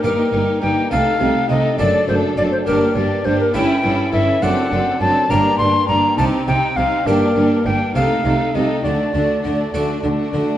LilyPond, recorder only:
\new Staff \with { instrumentName = "Recorder" } { \time 6/8 \key g \minor \tempo 4. = 68 bes'4 g''8 f''4 ees''8 | d''8 c''8 d''16 c''16 bes'8 d''8 c''16 bes'16 | g''4 e''8 fis''4 a''8 | bes''8 c'''8 bes''8 a''8 g''8 f''8 |
bes'4 g''8 f''4 ees''8 | d''4. r4. | }